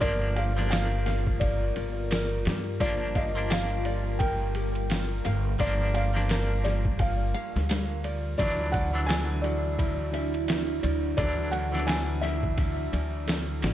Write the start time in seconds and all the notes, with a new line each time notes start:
Already playing: G3 F4 A#4
0.01 G1 F3 A#3 D4 A#4 D5, kick, ride
0.36 G4 F5, ride
0.57 F3 A#3 D4, snare
0.70 F4 F5, snare, ride, tambourine
1.06 F5, snare, ride
1.27 kick
1.40 D5 F5, kick, ride
1.76 G1 D5, ride
2.11 A#4, snare, ride, tambourine
2.45 G2 G4, snare, ride
2.80 G1 F3 A#3 D4 F4 D5, kick, ride
3.15 D#5 F5, kick, ride
3.35 F3 A#3 D4
3.50 F5, snare, ride, tambourine
3.85 D5, ride
4.19 A#4 G5, kick, ride
4.55 G4, ride
4.75 ride
4.90 F4, snare, ride, tambourine
5.25 G1 F5, ride
5.59 G1 F3 A#3 D4 D5 F5, kick, ride
5.94 D5 F5, ride
6.14 F3 A#3 D4, snare
6.29 A#4, snare, ride, tambourine
6.64 G4 D5, snare, ride
6.85 kick
6.99 F4 F5, kick, ride
7.34 F5, ride
7.56 D2, snare
7.69 F5, snare, ride, tambourine
8.04 D5, ride
8.38 D2 E3 F#3 D4 E4 D5 E5, kick, ride
8.72 D5 F#5, kick, ride
8.93 E3 F#3 D4
9.06 A4 G#5, ride, tambourine
9.10 snare
9.42 F#4 D5, ride
9.78 E4, kick, ride
10.13 E5, ride
10.34 ride
10.48 E5, snare, ride, tambourine
10.83 D2 D5, ride
11.17 D2 E3 F#3 D4 A4 D5, kick, ride
11.51 F#4 F#5, ride
11.72 E3 F#3 D4, snare
11.87 E4 G#5, snare, ride, tambourine
12.21 E5, snare, ride
12.43 kick
12.57 E5, kick, ride
12.92 D2 D5, ride
13.27 A4, snare, ride, tambourine
13.62 A1 F#4, snare, ride